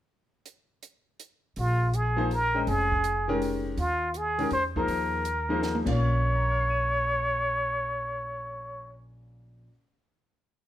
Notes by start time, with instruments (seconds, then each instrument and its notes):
0.46 closed hi-hat
0.83 closed hi-hat
1.20 closed hi-hat
1.56 upright bass A#1, muted trumpet F4, open hi-hat
1.94 muted trumpet G#4, closed hi-hat
2.17 grand piano F3 A#3 D#4 G#4 C5
2.31 muted trumpet A#4, open hi-hat
2.54 grand piano G#3 C#4 C5 D#5 G5
2.67 upright bass F1, muted trumpet G#4, open hi-hat
2.92 kick
3.04 closed hi-hat
3.28 grand piano D#3 G#3 C#4 G4 A#4
3.42 open hi-hat
3.77 upright bass D#2, muted trumpet F4, open hi-hat
4.14 muted trumpet G#4, closed hi-hat
4.38 grand piano D#3 G#3 C#4 G4 A#4, open hi-hat
4.51 upright bass E2, muted trumpet C5, open hi-hat
4.76 grand piano F3 A#3 D#4 G#4 C5, muted trumpet A#4, kick
4.88 upright bass D#2, open hi-hat
5.25 closed hi-hat
5.49 grand piano F3 A#3 D#4 G#4 C5
5.63 snare
5.75 high tom
5.85 upright bass A#1, grand piano A#2 A#3 C#4 F4 F5, kick, crash
5.89 muted trumpet C#5
6.35 grand piano A#5
6.43 grand piano C#6
6.51 grand piano F6
6.60 grand piano C7
6.70 grand piano D#7